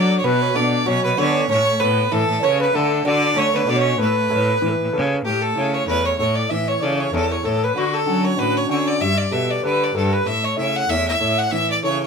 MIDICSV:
0, 0, Header, 1, 6, 480
1, 0, Start_track
1, 0, Tempo, 313152
1, 368, Time_signature, 4, 2, 24, 8
1, 18498, End_track
2, 0, Start_track
2, 0, Title_t, "Fiddle"
2, 0, Program_c, 0, 110
2, 0, Note_on_c, 0, 74, 104
2, 273, Note_off_c, 0, 74, 0
2, 282, Note_on_c, 0, 73, 72
2, 368, Note_on_c, 0, 71, 106
2, 391, Note_off_c, 0, 73, 0
2, 854, Note_on_c, 0, 74, 98
2, 877, Note_off_c, 0, 71, 0
2, 1322, Note_on_c, 0, 73, 113
2, 1345, Note_off_c, 0, 74, 0
2, 1585, Note_off_c, 0, 73, 0
2, 1594, Note_on_c, 0, 71, 90
2, 1809, Note_on_c, 0, 73, 93
2, 1832, Note_off_c, 0, 71, 0
2, 2288, Note_off_c, 0, 73, 0
2, 2301, Note_on_c, 0, 73, 112
2, 2760, Note_on_c, 0, 71, 97
2, 2783, Note_off_c, 0, 73, 0
2, 3254, Note_on_c, 0, 69, 112
2, 3277, Note_off_c, 0, 71, 0
2, 3739, Note_on_c, 0, 73, 98
2, 3762, Note_off_c, 0, 69, 0
2, 4000, Note_off_c, 0, 73, 0
2, 4009, Note_on_c, 0, 71, 82
2, 4223, Note_on_c, 0, 69, 85
2, 4246, Note_off_c, 0, 71, 0
2, 4695, Note_off_c, 0, 69, 0
2, 4705, Note_on_c, 0, 74, 95
2, 5173, Note_on_c, 0, 73, 107
2, 5196, Note_off_c, 0, 74, 0
2, 5454, Note_on_c, 0, 71, 93
2, 5477, Note_off_c, 0, 73, 0
2, 5664, Note_on_c, 0, 74, 93
2, 5687, Note_off_c, 0, 71, 0
2, 5790, Note_on_c, 0, 73, 100
2, 5813, Note_off_c, 0, 74, 0
2, 6130, Note_off_c, 0, 73, 0
2, 6142, Note_on_c, 0, 71, 104
2, 7786, Note_off_c, 0, 71, 0
2, 8046, Note_on_c, 0, 67, 98
2, 8306, Note_on_c, 0, 69, 91
2, 8329, Note_off_c, 0, 67, 0
2, 8799, Note_on_c, 0, 73, 91
2, 8822, Note_off_c, 0, 69, 0
2, 8996, Note_off_c, 0, 73, 0
2, 9005, Note_on_c, 0, 71, 105
2, 9277, Note_on_c, 0, 73, 92
2, 9300, Note_off_c, 0, 71, 0
2, 9469, Note_off_c, 0, 73, 0
2, 9478, Note_on_c, 0, 73, 88
2, 9738, Note_on_c, 0, 74, 77
2, 9761, Note_off_c, 0, 73, 0
2, 9972, Note_on_c, 0, 76, 87
2, 9995, Note_off_c, 0, 74, 0
2, 10244, Note_on_c, 0, 73, 94
2, 10267, Note_off_c, 0, 76, 0
2, 10462, Note_on_c, 0, 74, 85
2, 10485, Note_off_c, 0, 73, 0
2, 10737, Note_on_c, 0, 73, 93
2, 10760, Note_off_c, 0, 74, 0
2, 10937, Note_off_c, 0, 73, 0
2, 10963, Note_on_c, 0, 69, 95
2, 11218, Note_on_c, 0, 73, 90
2, 11241, Note_off_c, 0, 69, 0
2, 11429, Note_on_c, 0, 69, 92
2, 11452, Note_off_c, 0, 73, 0
2, 11708, Note_on_c, 0, 71, 82
2, 11731, Note_off_c, 0, 69, 0
2, 11921, Note_on_c, 0, 66, 93
2, 11944, Note_off_c, 0, 71, 0
2, 12174, Note_on_c, 0, 69, 87
2, 12197, Note_off_c, 0, 66, 0
2, 12641, Note_on_c, 0, 73, 95
2, 12664, Note_off_c, 0, 69, 0
2, 12856, Note_on_c, 0, 71, 106
2, 12879, Note_off_c, 0, 73, 0
2, 13136, Note_on_c, 0, 73, 98
2, 13159, Note_off_c, 0, 71, 0
2, 13329, Note_off_c, 0, 73, 0
2, 13338, Note_on_c, 0, 73, 94
2, 13609, Note_on_c, 0, 74, 96
2, 13632, Note_off_c, 0, 73, 0
2, 13810, Note_on_c, 0, 76, 109
2, 13833, Note_off_c, 0, 74, 0
2, 14068, Note_on_c, 0, 74, 94
2, 14091, Note_off_c, 0, 76, 0
2, 14290, Note_on_c, 0, 76, 91
2, 14313, Note_off_c, 0, 74, 0
2, 14572, Note_on_c, 0, 74, 81
2, 14595, Note_off_c, 0, 76, 0
2, 14776, Note_off_c, 0, 74, 0
2, 14796, Note_on_c, 0, 71, 98
2, 15078, Note_on_c, 0, 74, 90
2, 15101, Note_off_c, 0, 71, 0
2, 15269, Note_off_c, 0, 74, 0
2, 15277, Note_on_c, 0, 69, 88
2, 15524, Note_on_c, 0, 71, 89
2, 15547, Note_off_c, 0, 69, 0
2, 15737, Note_on_c, 0, 76, 107
2, 15760, Note_off_c, 0, 71, 0
2, 16011, Note_on_c, 0, 73, 99
2, 16034, Note_off_c, 0, 76, 0
2, 16215, Note_off_c, 0, 73, 0
2, 16233, Note_on_c, 0, 76, 92
2, 16497, Note_on_c, 0, 78, 106
2, 16520, Note_off_c, 0, 76, 0
2, 16699, Note_on_c, 0, 76, 122
2, 16722, Note_off_c, 0, 78, 0
2, 16968, Note_off_c, 0, 76, 0
2, 16977, Note_on_c, 0, 76, 102
2, 17453, Note_on_c, 0, 78, 99
2, 17476, Note_off_c, 0, 76, 0
2, 17652, Note_on_c, 0, 76, 114
2, 17675, Note_off_c, 0, 78, 0
2, 17924, Note_off_c, 0, 76, 0
2, 17939, Note_on_c, 0, 74, 90
2, 18124, Note_off_c, 0, 74, 0
2, 18149, Note_on_c, 0, 73, 89
2, 18394, Note_off_c, 0, 73, 0
2, 18434, Note_on_c, 0, 73, 87
2, 18498, Note_off_c, 0, 73, 0
2, 18498, End_track
3, 0, Start_track
3, 0, Title_t, "Flute"
3, 0, Program_c, 1, 73
3, 0, Note_on_c, 1, 74, 86
3, 281, Note_off_c, 1, 74, 0
3, 368, Note_on_c, 1, 71, 93
3, 647, Note_on_c, 1, 73, 81
3, 670, Note_off_c, 1, 71, 0
3, 863, Note_on_c, 1, 74, 82
3, 886, Note_off_c, 1, 73, 0
3, 1340, Note_on_c, 1, 73, 84
3, 1363, Note_off_c, 1, 74, 0
3, 1803, Note_off_c, 1, 73, 0
3, 1812, Note_on_c, 1, 73, 68
3, 2256, Note_off_c, 1, 73, 0
3, 2290, Note_on_c, 1, 73, 89
3, 2776, Note_on_c, 1, 71, 77
3, 2799, Note_off_c, 1, 73, 0
3, 3241, Note_off_c, 1, 71, 0
3, 3251, Note_on_c, 1, 69, 71
3, 3502, Note_off_c, 1, 69, 0
3, 3667, Note_on_c, 1, 74, 67
3, 3708, Note_on_c, 1, 73, 83
3, 3731, Note_off_c, 1, 74, 0
3, 4004, Note_on_c, 1, 71, 94
3, 4027, Note_off_c, 1, 73, 0
3, 4214, Note_on_c, 1, 69, 88
3, 4237, Note_off_c, 1, 71, 0
3, 4677, Note_off_c, 1, 69, 0
3, 4687, Note_on_c, 1, 74, 88
3, 5175, Note_on_c, 1, 73, 79
3, 5198, Note_off_c, 1, 74, 0
3, 5644, Note_on_c, 1, 74, 72
3, 5667, Note_off_c, 1, 73, 0
3, 5780, Note_on_c, 1, 73, 86
3, 5803, Note_off_c, 1, 74, 0
3, 6104, Note_on_c, 1, 71, 80
3, 6127, Note_off_c, 1, 73, 0
3, 6599, Note_on_c, 1, 73, 49
3, 6622, Note_off_c, 1, 71, 0
3, 6670, Note_on_c, 1, 71, 68
3, 6693, Note_off_c, 1, 73, 0
3, 7190, Note_on_c, 1, 69, 40
3, 7213, Note_off_c, 1, 71, 0
3, 7241, Note_on_c, 1, 71, 70
3, 7264, Note_off_c, 1, 69, 0
3, 7684, Note_off_c, 1, 71, 0
3, 8046, Note_on_c, 1, 67, 67
3, 8297, Note_on_c, 1, 69, 65
3, 8320, Note_off_c, 1, 67, 0
3, 8795, Note_on_c, 1, 73, 66
3, 8818, Note_off_c, 1, 69, 0
3, 8981, Note_off_c, 1, 73, 0
3, 8990, Note_on_c, 1, 71, 63
3, 9269, Note_on_c, 1, 73, 72
3, 9292, Note_off_c, 1, 71, 0
3, 9462, Note_off_c, 1, 73, 0
3, 9471, Note_on_c, 1, 73, 72
3, 9744, Note_on_c, 1, 74, 89
3, 9767, Note_off_c, 1, 73, 0
3, 9955, Note_on_c, 1, 76, 79
3, 9978, Note_off_c, 1, 74, 0
3, 10240, Note_on_c, 1, 73, 75
3, 10263, Note_off_c, 1, 76, 0
3, 10431, Note_on_c, 1, 74, 77
3, 10454, Note_off_c, 1, 73, 0
3, 10687, Note_on_c, 1, 73, 69
3, 10710, Note_off_c, 1, 74, 0
3, 10928, Note_on_c, 1, 69, 70
3, 10951, Note_off_c, 1, 73, 0
3, 11211, Note_on_c, 1, 73, 73
3, 11234, Note_off_c, 1, 69, 0
3, 11416, Note_on_c, 1, 69, 70
3, 11439, Note_off_c, 1, 73, 0
3, 11714, Note_on_c, 1, 71, 87
3, 11737, Note_off_c, 1, 69, 0
3, 11885, Note_off_c, 1, 71, 0
3, 11894, Note_on_c, 1, 66, 86
3, 12173, Note_on_c, 1, 69, 83
3, 12196, Note_off_c, 1, 66, 0
3, 12633, Note_off_c, 1, 69, 0
3, 12642, Note_on_c, 1, 73, 63
3, 12836, Note_off_c, 1, 73, 0
3, 12876, Note_on_c, 1, 71, 67
3, 13120, Note_on_c, 1, 73, 73
3, 13143, Note_off_c, 1, 71, 0
3, 13323, Note_off_c, 1, 73, 0
3, 13332, Note_on_c, 1, 73, 81
3, 13610, Note_on_c, 1, 74, 95
3, 13633, Note_off_c, 1, 73, 0
3, 13820, Note_on_c, 1, 76, 86
3, 13843, Note_off_c, 1, 74, 0
3, 14083, Note_on_c, 1, 74, 79
3, 14106, Note_off_c, 1, 76, 0
3, 14295, Note_on_c, 1, 76, 84
3, 14318, Note_off_c, 1, 74, 0
3, 14577, Note_on_c, 1, 74, 75
3, 14600, Note_off_c, 1, 76, 0
3, 14768, Note_on_c, 1, 71, 66
3, 14791, Note_off_c, 1, 74, 0
3, 15247, Note_on_c, 1, 69, 65
3, 15270, Note_off_c, 1, 71, 0
3, 15512, Note_on_c, 1, 71, 79
3, 15535, Note_off_c, 1, 69, 0
3, 15725, Note_off_c, 1, 71, 0
3, 15736, Note_on_c, 1, 76, 82
3, 16006, Note_on_c, 1, 73, 81
3, 16029, Note_off_c, 1, 76, 0
3, 16199, Note_on_c, 1, 76, 80
3, 16222, Note_off_c, 1, 73, 0
3, 16496, Note_on_c, 1, 78, 77
3, 16519, Note_off_c, 1, 76, 0
3, 16708, Note_on_c, 1, 76, 85
3, 16731, Note_off_c, 1, 78, 0
3, 16968, Note_off_c, 1, 76, 0
3, 16977, Note_on_c, 1, 76, 92
3, 17443, Note_on_c, 1, 78, 102
3, 17466, Note_off_c, 1, 76, 0
3, 17651, Note_off_c, 1, 78, 0
3, 17674, Note_on_c, 1, 76, 95
3, 17917, Note_off_c, 1, 76, 0
3, 18140, Note_on_c, 1, 73, 75
3, 18232, Note_off_c, 1, 73, 0
3, 18435, Note_on_c, 1, 73, 70
3, 18498, Note_off_c, 1, 73, 0
3, 18498, End_track
4, 0, Start_track
4, 0, Title_t, "Upright piano"
4, 0, Program_c, 2, 0
4, 0, Note_on_c, 2, 62, 44
4, 0, Note_on_c, 2, 66, 41
4, 0, Note_on_c, 2, 69, 53
4, 266, Note_off_c, 2, 66, 0
4, 267, Note_off_c, 2, 62, 0
4, 275, Note_off_c, 2, 69, 0
4, 366, Note_on_c, 2, 47, 66
4, 832, Note_off_c, 2, 47, 0
4, 835, Note_on_c, 2, 59, 47
4, 840, Note_on_c, 2, 62, 50
4, 848, Note_on_c, 2, 69, 53
4, 1224, Note_off_c, 2, 59, 0
4, 1227, Note_off_c, 2, 62, 0
4, 1232, Note_off_c, 2, 69, 0
4, 1313, Note_on_c, 2, 54, 65
4, 1786, Note_off_c, 2, 54, 0
4, 1797, Note_on_c, 2, 59, 46
4, 1803, Note_on_c, 2, 50, 44
4, 1812, Note_on_c, 2, 69, 52
4, 2185, Note_off_c, 2, 59, 0
4, 2189, Note_off_c, 2, 50, 0
4, 2194, Note_off_c, 2, 69, 0
4, 2288, Note_on_c, 2, 57, 57
4, 2753, Note_off_c, 2, 57, 0
4, 2757, Note_on_c, 2, 69, 49
4, 2763, Note_on_c, 2, 71, 43
4, 2767, Note_on_c, 2, 73, 54
4, 3145, Note_off_c, 2, 69, 0
4, 3149, Note_off_c, 2, 71, 0
4, 3151, Note_off_c, 2, 73, 0
4, 3246, Note_on_c, 2, 52, 61
4, 3712, Note_off_c, 2, 52, 0
4, 3720, Note_on_c, 2, 69, 47
4, 3724, Note_on_c, 2, 71, 43
4, 3730, Note_on_c, 2, 73, 55
4, 4106, Note_off_c, 2, 69, 0
4, 4109, Note_off_c, 2, 71, 0
4, 4113, Note_off_c, 2, 73, 0
4, 4212, Note_on_c, 2, 50, 60
4, 4673, Note_on_c, 2, 62, 50
4, 4675, Note_off_c, 2, 50, 0
4, 4683, Note_on_c, 2, 66, 50
4, 4692, Note_on_c, 2, 69, 54
4, 5062, Note_off_c, 2, 62, 0
4, 5068, Note_off_c, 2, 66, 0
4, 5074, Note_off_c, 2, 69, 0
4, 5151, Note_on_c, 2, 57, 67
4, 5624, Note_off_c, 2, 57, 0
4, 5626, Note_on_c, 2, 62, 42
4, 5631, Note_on_c, 2, 66, 41
4, 5643, Note_on_c, 2, 69, 47
4, 6018, Note_off_c, 2, 62, 0
4, 6021, Note_off_c, 2, 66, 0
4, 6028, Note_off_c, 2, 69, 0
4, 6120, Note_on_c, 2, 57, 67
4, 6589, Note_off_c, 2, 57, 0
4, 6591, Note_on_c, 2, 69, 52
4, 6598, Note_on_c, 2, 71, 46
4, 6608, Note_on_c, 2, 73, 61
4, 6981, Note_off_c, 2, 69, 0
4, 6985, Note_off_c, 2, 71, 0
4, 6991, Note_off_c, 2, 73, 0
4, 7079, Note_on_c, 2, 52, 64
4, 7548, Note_off_c, 2, 52, 0
4, 7563, Note_on_c, 2, 69, 49
4, 7563, Note_on_c, 2, 71, 46
4, 7570, Note_on_c, 2, 73, 56
4, 7948, Note_off_c, 2, 69, 0
4, 7949, Note_off_c, 2, 71, 0
4, 7953, Note_off_c, 2, 73, 0
4, 8036, Note_on_c, 2, 57, 53
4, 8521, Note_on_c, 2, 64, 51
4, 8534, Note_on_c, 2, 69, 45
4, 8537, Note_on_c, 2, 73, 49
4, 8974, Note_off_c, 2, 64, 0
4, 8976, Note_off_c, 2, 73, 0
4, 8978, Note_off_c, 2, 69, 0
4, 8997, Note_on_c, 2, 64, 50
4, 8999, Note_on_c, 2, 73, 56
4, 9001, Note_on_c, 2, 69, 38
4, 9468, Note_off_c, 2, 64, 0
4, 9469, Note_off_c, 2, 73, 0
4, 9470, Note_off_c, 2, 69, 0
4, 9492, Note_on_c, 2, 64, 39
4, 9504, Note_on_c, 2, 69, 47
4, 9511, Note_on_c, 2, 73, 49
4, 9905, Note_off_c, 2, 57, 0
4, 9956, Note_off_c, 2, 64, 0
4, 9962, Note_off_c, 2, 69, 0
4, 9966, Note_off_c, 2, 73, 0
4, 9978, Note_on_c, 2, 52, 59
4, 10456, Note_on_c, 2, 64, 50
4, 10461, Note_on_c, 2, 69, 46
4, 10472, Note_on_c, 2, 73, 48
4, 10919, Note_off_c, 2, 64, 0
4, 10921, Note_off_c, 2, 69, 0
4, 10927, Note_off_c, 2, 73, 0
4, 10942, Note_on_c, 2, 64, 51
4, 10952, Note_on_c, 2, 69, 44
4, 10955, Note_on_c, 2, 73, 58
4, 11372, Note_off_c, 2, 64, 0
4, 11381, Note_off_c, 2, 69, 0
4, 11385, Note_off_c, 2, 73, 0
4, 11395, Note_on_c, 2, 64, 47
4, 11404, Note_on_c, 2, 69, 45
4, 11408, Note_on_c, 2, 73, 58
4, 11838, Note_off_c, 2, 52, 0
4, 11868, Note_off_c, 2, 64, 0
4, 11873, Note_off_c, 2, 69, 0
4, 11875, Note_off_c, 2, 73, 0
4, 11889, Note_on_c, 2, 50, 54
4, 12355, Note_on_c, 2, 61, 54
4, 12365, Note_on_c, 2, 62, 42
4, 12377, Note_on_c, 2, 66, 57
4, 12806, Note_off_c, 2, 61, 0
4, 12811, Note_off_c, 2, 62, 0
4, 12822, Note_off_c, 2, 66, 0
4, 12829, Note_on_c, 2, 61, 41
4, 12834, Note_on_c, 2, 62, 41
4, 12845, Note_on_c, 2, 66, 51
4, 13293, Note_off_c, 2, 61, 0
4, 13302, Note_off_c, 2, 62, 0
4, 13304, Note_off_c, 2, 66, 0
4, 13316, Note_on_c, 2, 61, 47
4, 13325, Note_on_c, 2, 62, 36
4, 13327, Note_on_c, 2, 66, 58
4, 13754, Note_off_c, 2, 50, 0
4, 13789, Note_off_c, 2, 61, 0
4, 13794, Note_off_c, 2, 62, 0
4, 13795, Note_off_c, 2, 66, 0
4, 13815, Note_on_c, 2, 55, 55
4, 14273, Note_on_c, 2, 67, 45
4, 14279, Note_on_c, 2, 69, 44
4, 14292, Note_on_c, 2, 71, 48
4, 14746, Note_off_c, 2, 67, 0
4, 14751, Note_off_c, 2, 69, 0
4, 14758, Note_off_c, 2, 71, 0
4, 14769, Note_on_c, 2, 67, 42
4, 14777, Note_on_c, 2, 69, 45
4, 14783, Note_on_c, 2, 71, 50
4, 15216, Note_off_c, 2, 67, 0
4, 15224, Note_off_c, 2, 69, 0
4, 15229, Note_off_c, 2, 71, 0
4, 15239, Note_on_c, 2, 67, 46
4, 15247, Note_on_c, 2, 69, 43
4, 15252, Note_on_c, 2, 71, 46
4, 15676, Note_off_c, 2, 55, 0
4, 15711, Note_off_c, 2, 67, 0
4, 15715, Note_off_c, 2, 69, 0
4, 15717, Note_off_c, 2, 71, 0
4, 15722, Note_on_c, 2, 57, 48
4, 16206, Note_on_c, 2, 64, 49
4, 16208, Note_on_c, 2, 69, 40
4, 16220, Note_on_c, 2, 73, 50
4, 16669, Note_off_c, 2, 64, 0
4, 16671, Note_off_c, 2, 69, 0
4, 16677, Note_off_c, 2, 73, 0
4, 16692, Note_on_c, 2, 64, 42
4, 16694, Note_on_c, 2, 69, 40
4, 16700, Note_on_c, 2, 73, 42
4, 17138, Note_off_c, 2, 64, 0
4, 17152, Note_off_c, 2, 73, 0
4, 17153, Note_off_c, 2, 69, 0
4, 17161, Note_on_c, 2, 64, 47
4, 17175, Note_on_c, 2, 73, 52
4, 17176, Note_on_c, 2, 69, 44
4, 17588, Note_off_c, 2, 57, 0
4, 17631, Note_off_c, 2, 64, 0
4, 17638, Note_off_c, 2, 73, 0
4, 17639, Note_off_c, 2, 69, 0
4, 17661, Note_on_c, 2, 52, 56
4, 18137, Note_on_c, 2, 64, 50
4, 18139, Note_on_c, 2, 69, 46
4, 18150, Note_on_c, 2, 73, 50
4, 18498, Note_off_c, 2, 52, 0
4, 18498, Note_off_c, 2, 64, 0
4, 18498, Note_off_c, 2, 69, 0
4, 18498, Note_off_c, 2, 73, 0
4, 18498, End_track
5, 0, Start_track
5, 0, Title_t, "Bouzouki"
5, 0, Program_c, 3, 25
5, 0, Note_on_c, 3, 62, 88
5, 247, Note_off_c, 3, 62, 0
5, 371, Note_on_c, 3, 59, 75
5, 816, Note_off_c, 3, 59, 0
5, 857, Note_on_c, 3, 62, 76
5, 1299, Note_off_c, 3, 62, 0
5, 1326, Note_on_c, 3, 61, 82
5, 1580, Note_off_c, 3, 61, 0
5, 1601, Note_on_c, 3, 59, 73
5, 1790, Note_off_c, 3, 59, 0
5, 1797, Note_on_c, 3, 61, 88
5, 2248, Note_off_c, 3, 61, 0
5, 2292, Note_on_c, 3, 61, 80
5, 2736, Note_off_c, 3, 61, 0
5, 2767, Note_on_c, 3, 59, 76
5, 3213, Note_off_c, 3, 59, 0
5, 3249, Note_on_c, 3, 57, 74
5, 3694, Note_off_c, 3, 57, 0
5, 3723, Note_on_c, 3, 61, 86
5, 3978, Note_off_c, 3, 61, 0
5, 3984, Note_on_c, 3, 59, 85
5, 4181, Note_off_c, 3, 59, 0
5, 4187, Note_on_c, 3, 57, 68
5, 4643, Note_off_c, 3, 57, 0
5, 4674, Note_on_c, 3, 62, 82
5, 5126, Note_off_c, 3, 62, 0
5, 5142, Note_on_c, 3, 61, 92
5, 5407, Note_off_c, 3, 61, 0
5, 5421, Note_on_c, 3, 59, 73
5, 5622, Note_off_c, 3, 59, 0
5, 5626, Note_on_c, 3, 62, 91
5, 5762, Note_on_c, 3, 61, 80
5, 5777, Note_off_c, 3, 62, 0
5, 6091, Note_off_c, 3, 61, 0
5, 6145, Note_on_c, 3, 59, 60
5, 7787, Note_off_c, 3, 59, 0
5, 18498, End_track
6, 0, Start_track
6, 0, Title_t, "Cello"
6, 0, Program_c, 4, 42
6, 0, Note_on_c, 4, 54, 97
6, 333, Note_off_c, 4, 54, 0
6, 365, Note_on_c, 4, 47, 87
6, 817, Note_off_c, 4, 47, 0
6, 851, Note_on_c, 4, 47, 95
6, 1300, Note_off_c, 4, 47, 0
6, 1333, Note_on_c, 4, 47, 99
6, 1586, Note_off_c, 4, 47, 0
6, 1611, Note_on_c, 4, 47, 81
6, 1800, Note_off_c, 4, 47, 0
6, 1808, Note_on_c, 4, 50, 110
6, 2258, Note_off_c, 4, 50, 0
6, 2302, Note_on_c, 4, 45, 87
6, 2746, Note_off_c, 4, 45, 0
6, 2775, Note_on_c, 4, 45, 113
6, 3222, Note_off_c, 4, 45, 0
6, 3248, Note_on_c, 4, 45, 101
6, 3503, Note_off_c, 4, 45, 0
6, 3512, Note_on_c, 4, 45, 76
6, 3710, Note_off_c, 4, 45, 0
6, 3723, Note_on_c, 4, 49, 101
6, 4175, Note_off_c, 4, 49, 0
6, 4195, Note_on_c, 4, 50, 96
6, 4651, Note_off_c, 4, 50, 0
6, 4671, Note_on_c, 4, 50, 111
6, 5129, Note_off_c, 4, 50, 0
6, 5150, Note_on_c, 4, 50, 93
6, 5405, Note_off_c, 4, 50, 0
6, 5414, Note_on_c, 4, 50, 84
6, 5620, Note_off_c, 4, 50, 0
6, 5630, Note_on_c, 4, 47, 116
6, 6088, Note_off_c, 4, 47, 0
6, 6107, Note_on_c, 4, 45, 85
6, 6567, Note_off_c, 4, 45, 0
6, 6586, Note_on_c, 4, 45, 108
6, 7046, Note_off_c, 4, 45, 0
6, 7074, Note_on_c, 4, 45, 86
6, 7336, Note_off_c, 4, 45, 0
6, 7352, Note_on_c, 4, 45, 82
6, 7550, Note_off_c, 4, 45, 0
6, 7559, Note_on_c, 4, 49, 112
6, 8013, Note_off_c, 4, 49, 0
6, 8044, Note_on_c, 4, 45, 88
6, 8496, Note_off_c, 4, 45, 0
6, 8527, Note_on_c, 4, 49, 100
6, 8978, Note_off_c, 4, 49, 0
6, 9006, Note_on_c, 4, 40, 84
6, 9458, Note_off_c, 4, 40, 0
6, 9486, Note_on_c, 4, 45, 104
6, 9938, Note_off_c, 4, 45, 0
6, 9973, Note_on_c, 4, 45, 80
6, 10422, Note_off_c, 4, 45, 0
6, 10450, Note_on_c, 4, 49, 101
6, 10901, Note_off_c, 4, 49, 0
6, 10925, Note_on_c, 4, 40, 84
6, 11378, Note_off_c, 4, 40, 0
6, 11408, Note_on_c, 4, 45, 97
6, 11860, Note_off_c, 4, 45, 0
6, 11890, Note_on_c, 4, 50, 77
6, 12341, Note_off_c, 4, 50, 0
6, 12376, Note_on_c, 4, 54, 89
6, 12825, Note_off_c, 4, 54, 0
6, 12855, Note_on_c, 4, 45, 84
6, 13304, Note_off_c, 4, 45, 0
6, 13325, Note_on_c, 4, 50, 83
6, 13779, Note_off_c, 4, 50, 0
6, 13804, Note_on_c, 4, 43, 87
6, 14258, Note_off_c, 4, 43, 0
6, 14283, Note_on_c, 4, 47, 87
6, 14738, Note_off_c, 4, 47, 0
6, 14760, Note_on_c, 4, 50, 88
6, 15216, Note_off_c, 4, 50, 0
6, 15249, Note_on_c, 4, 43, 102
6, 15701, Note_off_c, 4, 43, 0
6, 15717, Note_on_c, 4, 45, 77
6, 16175, Note_off_c, 4, 45, 0
6, 16205, Note_on_c, 4, 49, 83
6, 16659, Note_off_c, 4, 49, 0
6, 16686, Note_on_c, 4, 40, 79
6, 17139, Note_off_c, 4, 40, 0
6, 17173, Note_on_c, 4, 45, 90
6, 17622, Note_off_c, 4, 45, 0
6, 17654, Note_on_c, 4, 45, 77
6, 18103, Note_off_c, 4, 45, 0
6, 18144, Note_on_c, 4, 49, 80
6, 18498, Note_off_c, 4, 49, 0
6, 18498, End_track
0, 0, End_of_file